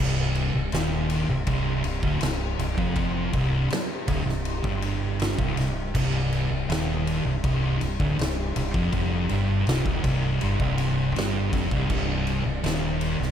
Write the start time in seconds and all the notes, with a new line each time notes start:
Already playing: C1 C2
0.00 C3 G3 D4
0.35 ride
0.54 C1 C2
0.72 D#1 D#2, snare, ride
1.10 ride
1.28 C1 C2
1.47 C1 C2, kick, ride
1.84 C1 C2, ride
2.03 D1 D2, kick
2.21 C1 C2, snare, ride
2.59 C1 C2, ride
2.78 F1 F2, kick
2.96 kick, ride
3.33 C1 C2, kick, ride
3.70 muted fingered electric bass stroke, muted distorted electric guitar stroke, snare, ride
4.08 D1 D2, kick, ride
4.26 C1 C2, snare
4.45 ride
4.64 G1 G2, kick
4.82 ride
5.19 snare, ride
5.38 C1 C2, kick
5.57 C1 C2, snare, ride
5.95 C1 C2, kick, crash
6.32 ride
6.50 C1 C2
6.69 D#1 D#2, snare, ride
7.07 ride
7.25 C1 C2
7.44 C1 C2, kick, ride
7.81 C1 C2, ride
8.00 D1 D2, kick
8.18 C1 C2, snare, ride
8.56 C1 C2, ride
8.74 F1 F2, kick
8.92 F1 F2, kick, ride
9.29 G1 G2, ride
9.67 C1 C2, snare, ride
9.86 D1 D2, kick
10.04 C1 C2, kick, ride
10.41 G1 G2, ride
10.60 C1 C2, kick
10.78 ride
11.15 G1 G2, snare, ride
11.52 F1 F2, kick, snare, ride
11.71 C1 C2, kick
11.90 C1 C2, kick, crash
12.27 ride
12.45 C1 C2
12.64 D#1 D#2, snare, ride
13.01 ride
13.19 C1 C2, snare